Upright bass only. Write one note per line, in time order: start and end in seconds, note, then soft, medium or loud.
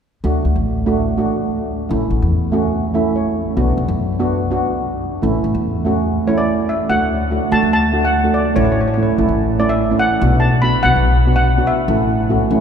0.24 0.40 D2 medium
0.45 0.53 D2 medium
0.56 1.19 A1 medium
1.91 2.06 A1 medium
2.10 2.19 A1 medium
2.22 2.86 E2 medium
3.57 3.73 B1 medium
3.77 3.86 B1 medium
3.88 4.52 F#2 medium
5.23 5.39 A1 medium
5.44 5.52 A1 medium
5.55 6.18 E2 medium
6.89 7.37 D2 medium
7.52 7.60 D2 medium
7.63 8.26 D2 medium
8.56 9.04 A1 medium
9.18 9.27 A1 medium
9.28 9.92 A1 medium
10.21 10.69 B1 medium
10.84 10.93 B1 medium
10.96 11.59 B1 medium
11.88 12.36 A1 medium
12.51 12.59 A1 medium